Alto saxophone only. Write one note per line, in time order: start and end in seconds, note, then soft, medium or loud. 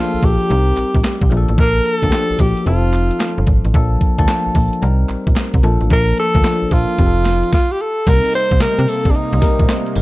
0.00 0.26 F4 medium
0.24 1.32 G4 loud
1.60 1.87 A#4 loud
1.86 2.42 A4 loud
2.41 2.67 G4 medium
2.67 3.44 F4 medium
5.93 6.17 A#4 loud
6.19 6.74 A4 loud
6.72 7.53 F4 loud
7.54 7.73 F4 medium
7.71 7.83 G4 medium
7.81 8.10 A4 loud
8.08 8.34 A#4 loud
8.35 8.59 C5 loud
8.62 8.91 A#4 loud
8.89 9.12 A4 loud
9.11 9.18 D4 medium
9.16 9.96 D#4 medium